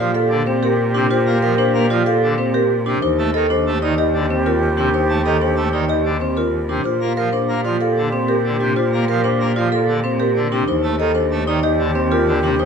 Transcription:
Already playing: cello A#2, alto flute G4
0.00 pipe organ F3, vibraphone F4, marimba D5
0.14 vibraphone A4, marimba F5
0.30 pipe organ D3
0.46 vibraphone C4, marimba C5
0.63 vibraphone G4, marimba A#4
0.94 pipe organ C3, vibraphone D4, marimba G4
1.11 vibraphone F4, marimba C5
1.27 pipe organ A#3
1.42 pipe organ F3, vibraphone A#4, marimba F5
1.58 vibraphone D4, marimba C5
1.74 pipe organ A#3
1.90 pipe organ F3, vibraphone F4, marimba D5
2.06 vibraphone A4, marimba F5
2.23 pipe organ D3
2.38 vibraphone C4, marimba C5
2.54 vibraphone G4, marimba A#4
2.86 pipe organ C3, vibraphone D4, marimba G4
3.02 cello D#2, vibraphone D#4, alto flute G4, marimba C5
3.18 pipe organ A3
3.34 pipe organ D#3, vibraphone A4, marimba D#5
3.50 vibraphone D4, marimba C5
3.67 pipe organ A3
3.82 pipe organ D#3, vibraphone D#4, marimba D5
3.98 vibraphone G4, marimba D#5
4.14 pipe organ D3
4.30 vibraphone C4, marimba C5
4.46 vibraphone F4, marimba A#4
4.77 pipe organ C3, vibraphone D4, marimba G4
4.94 vibraphone D#4, marimba C5
5.09 pipe organ A3
5.24 pipe organ D#3, vibraphone A4, marimba D#5
5.42 vibraphone D4, marimba C5
5.56 pipe organ A3
5.72 pipe organ D#3, vibraphone D#4, marimba D5
5.89 vibraphone G4, marimba D#5
6.05 pipe organ D3
6.20 vibraphone C4, marimba C5
6.37 vibraphone F4, marimba A#4
6.69 pipe organ C3, vibraphone D4, marimba G4
6.84 cello A#2, vibraphone F4, alto flute G4, marimba C5
7.01 pipe organ A#3
7.17 pipe organ F3, vibraphone A#4, marimba F5
7.33 vibraphone D4, marimba C5
7.49 pipe organ A#3
7.64 pipe organ F3, vibraphone F4, marimba D5
7.80 vibraphone A4, marimba F5
7.97 pipe organ D3
8.12 vibraphone C4, marimba C5
8.28 vibraphone G4, marimba A#4
8.44 pipe organ D3
8.60 pipe organ C3, vibraphone D4, marimba G4
8.76 vibraphone F4, marimba C5
8.93 pipe organ A#3
9.08 pipe organ F3, vibraphone A#4, marimba F5
9.24 vibraphone D4, marimba C5
9.40 pipe organ A#3
9.56 pipe organ F3, vibraphone F4, marimba D5
9.72 vibraphone A4, marimba F5
9.88 pipe organ D3
10.04 vibraphone C4, marimba C5
10.20 vibraphone G4, marimba A#4
10.35 pipe organ D3
10.51 pipe organ C3, vibraphone D4, marimba G4
10.67 cello D#2, vibraphone D#4, alto flute G4, marimba C5
10.83 pipe organ A3
10.99 pipe organ D#3, vibraphone A4, marimba D#5
11.15 vibraphone D4, marimba C5
11.31 pipe organ A3
11.47 pipe organ D#3, vibraphone D#4, marimba D5
11.63 vibraphone G4, marimba D#5
11.79 pipe organ D3
11.95 vibraphone C4, marimba C5
12.11 vibraphone F4, marimba A#4
12.27 pipe organ D3
12.42 pipe organ C3, vibraphone D4, marimba G4
12.59 vibraphone D#4, marimba C5

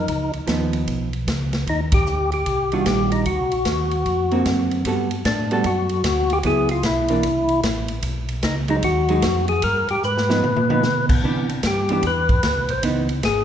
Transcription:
Already playing: tonewheel organ D#4
0.08 tonewheel organ C#2, kick, ride
0.33 tonewheel organ C#2, ride
0.47 tonewheel organ D#2, hollow-body jazz guitar F3 B3 D#4, kick, snare, hi-hat pedal, ride
0.73 ride
0.87 tonewheel organ B1, kick, ride
1.13 ride
1.27 tonewheel organ C#2, kick, snare, hi-hat pedal, ride
1.53 snare, ride
1.67 tonewheel organ D#2 D#4, kick, ride
1.92 tonewheel organ G4, kick, ride
2.06 tonewheel organ D2, hi-hat pedal
2.32 tonewheel organ G4, ride
2.46 tonewheel organ C2, kick, ride
2.72 hollow-body jazz guitar D#3 G3 D4 F4, tonewheel organ F#4, ride
2.86 tonewheel organ A#1 G4, kick, snare, hi-hat pedal, ride
3.12 tonewheel organ D#4, ride
3.26 tonewheel organ D2 F#4, kick, ride
3.39 tonewheel organ C2
3.52 tonewheel organ A#1, ride
3.65 tonewheel organ D#2, kick, snare, hi-hat pedal, ride
3.91 ride
4.05 tonewheel organ F2, kick, ride
4.31 hollow-body jazz guitar D3 A#3 C4 F#4, ride
4.45 tonewheel organ F#2, kick, snare, hi-hat pedal, ride
4.71 ride
4.85 tonewheel organ G2, hollow-body jazz guitar G3 B3 F#4 A4, kick, ride
5.11 ride
5.25 tonewheel organ A2 D4, kick, snare, hi-hat pedal, ride
5.51 hollow-body jazz guitar G3 B3 F#4 A4, tonewheel organ D4, ride
5.64 tonewheel organ F#2 F#4, kick, ride
5.89 ride
6.04 tonewheel organ D2, kick, snare, hi-hat pedal, ride
6.30 tonewheel organ G4, ride
6.43 tonewheel organ C#2 G#4, hollow-body jazz guitar F#3 B3 E4, kick, ride
6.69 tonewheel organ F4, ride
6.83 tonewheel organ B1 E4, kick, snare, hi-hat pedal, ride
7.08 hollow-body jazz guitar E3 A#3 D4, ride
7.23 tonewheel organ C2, kick, ride
7.49 ride
7.63 tonewheel organ A1, kick, snare, hi-hat pedal, ride
7.88 ride
8.02 tonewheel organ B1, kick, ride
8.29 ride
8.43 tonewheel organ C#2 D#4, kick, snare, hi-hat pedal, ride
8.68 hollow-body jazz guitar F#3 G#3 D#4, tonewheel organ D#4, ride
8.83 tonewheel organ D#2 F#4, kick, ride
9.08 hollow-body jazz guitar F#3 G#3 D#4, ride
9.22 tonewheel organ F2, kick, snare, hi-hat pedal, ride
9.48 tonewheel organ G#4, ride
9.62 tonewheel organ G2 A#4, kick, ride
9.89 tonewheel organ G2 G4, ride
10.03 tonewheel organ G#2 B4, hi-hat pedal
10.17 snare
10.29 hollow-body jazz guitar F3 B3 D#4, snare
10.43 tonewheel organ A#2, high tom
10.56 high tom
10.69 hollow-body jazz guitar F3 B3 D#4, high tom
10.83 tonewheel organ B2, snare, hi-hat pedal
11.09 kick, crash
11.24 tonewheel organ C3, hollow-body jazz guitar E3 B3 D4, kick
11.49 ride
11.63 tonewheel organ G2 G4, kick, snare, hi-hat pedal, ride
11.89 hollow-body jazz guitar E3 B3 D4, ride
11.93 tonewheel organ G4
12.03 tonewheel organ E2, kick, ride
12.07 tonewheel organ B4
12.29 kick, ride
12.43 tonewheel organ D2, kick, snare, hi-hat pedal, ride
12.57 tonewheel organ C2
12.69 tonewheel organ B1 C5, ride
12.83 tonewheel organ C#2, hollow-body jazz guitar E3 B3 D#4, kick, ride
13.09 ride
13.23 tonewheel organ G#1 G#4, kick, snare, hi-hat pedal, ride

